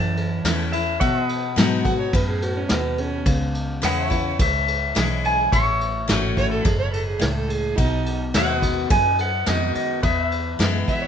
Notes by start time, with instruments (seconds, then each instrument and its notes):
Already playing: fingered electric bass F#2, steel-string acoustic guitar E3, pedal steel guitar C#5 E5 A5
0.17 ride
0.45 fingered electric bass E2, steel-string acoustic guitar E3 A3 C#4 E4, snare, ride
0.72 steel-string acoustic guitar C#4 E4, pedal steel guitar E5, ride
1.00 steel-string acoustic guitar B2, fingered electric bass B2, pedal steel guitar C#5 E5 F#5, kick, ride
1.21 pedal steel guitar B4 D#5
1.29 ride
1.56 fingered electric bass G#2, steel-string acoustic guitar F#3 B3 D#4 F#4, snare, ride
1.84 steel-string acoustic guitar D#4 F#4, fiddle F#5, kick, ride
1.99 fiddle C#5
2.13 fingered electric bass F#2, steel-string acoustic guitar A2, fiddle B4, kick, ride
2.28 fiddle G#4
2.42 fiddle F#4, ride
2.57 fiddle C#4
2.69 fingered electric bass D#2, steel-string acoustic guitar B2, fiddle B3, snare, ride
2.98 fiddle C#4, ride
3.25 fingered electric bass C#2, steel-string acoustic guitar C#3, kick, ride
3.54 ride
3.82 fingered electric bass E2, steel-string acoustic guitar E3 G#3 C#4 E4, pedal steel guitar B4 D#5 F#5, snare, ride
4.04 pedal steel guitar E5
4.08 steel-string acoustic guitar E4, pedal steel guitar C#5, kick, ride
4.13 steel-string acoustic guitar C#4
4.39 fingered electric bass C#2, steel-string acoustic guitar G#2, pedal steel guitar E5, kick, ride
4.68 ride
4.95 fingered electric bass B1, steel-string acoustic guitar E3 G#3 C#4 E4, snare, ride
5.24 pedal steel guitar G#5, ride
5.52 fingered electric bass A1, steel-string acoustic guitar A2, pedal steel guitar C#5 E5 C#6, kick, ride
5.81 ride
6.08 fingered electric bass G#1, steel-string acoustic guitar E3 A3 C#4 F#4, snare, ride
6.37 fiddle C#5, kick, ride
6.51 fiddle A4
6.62 fingered electric bass F#1, steel-string acoustic guitar G#2, fiddle G#4, pedal steel guitar B5, kick, ride
6.78 fiddle C#5
6.93 fiddle A4, ride
7.06 fiddle G#4
7.20 fingered electric bass C#2, steel-string acoustic guitar A2, fiddle C#5, snare, ride
7.35 fiddle A4
7.48 fiddle G#4, ride
7.76 fingered electric bass B1, steel-string acoustic guitar B2, fiddle D#4, kick, ride
8.06 ride
8.34 fingered electric bass D#2, steel-string acoustic guitar D#3 G#3 B3 F#4, pedal steel guitar C#5 E5 F#5, snare, ride
8.56 pedal steel guitar D#5
8.60 pedal steel guitar B4, kick, ride
8.90 steel-string acoustic guitar F#2, fingered electric bass F#2, pedal steel guitar G#5, kick, ride
9.18 pedal steel guitar F#5, ride
9.46 fingered electric bass F2, steel-string acoustic guitar D#3 G#3 B3 F#4, pedal steel guitar D#5, snare, ride
9.75 pedal steel guitar D#5, muted fingered electric bass stroke, ride
10.03 fingered electric bass E2, steel-string acoustic guitar E2, pedal steel guitar B4 D#5 E5, kick, ride
10.24 pedal steel guitar E5
10.31 ride
10.59 fingered electric bass F#2, steel-string acoustic guitar E3 G#3 B3 E4, snare, ride
10.87 fiddle E5, muted fingered electric bass stroke, kick, ride
11.02 fiddle C#5